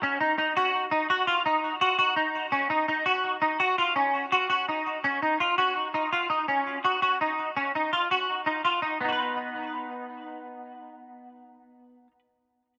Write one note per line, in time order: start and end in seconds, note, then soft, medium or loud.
0.03 0.17 C#4 medium
0.21 0.35 D#4 medium
0.38 0.52 D#4 medium
0.57 0.85 F#4 medium
0.91 1.06 D#4 medium
1.10 1.24 F#4 medium
1.27 1.42 F4 medium
1.46 1.74 D#4 medium
1.81 1.96 F#4 medium
1.99 2.13 F#4 medium
2.16 2.45 D#4 medium
2.52 2.67 C#4 medium
2.70 2.85 D#4 medium
2.88 3.03 D#4 medium
3.06 3.35 F#4 medium
3.42 3.56 D#4 medium
3.60 3.75 F#4 medium
3.78 3.93 F4 medium
3.96 4.25 C#4 medium
4.32 4.47 F#4 medium
4.50 4.64 F#4 medium
4.69 4.97 D#4 medium
5.04 5.19 C#4 medium
5.22 5.37 D#4 medium
5.40 5.55 F4 medium
5.58 5.87 F#4 medium
5.94 6.09 D#4 medium
6.13 6.27 F4 medium
6.30 6.44 D#4 medium
6.48 6.77 C#4 medium
6.84 6.99 F#4 medium
7.02 7.17 F#4 medium
7.21 7.50 D#4 medium
7.57 7.71 C#4 medium
7.75 7.89 D#4 medium
7.93 8.07 F4 medium
8.11 8.40 F#4 medium
8.46 8.61 D#4 soft
8.65 8.79 F4 medium
8.82 8.97 D#4 medium
9.01 12.07 B3 soft
9.01 12.11 D#4 soft
9.09 9.12 F#4 soft
9.09 12.19 B4 soft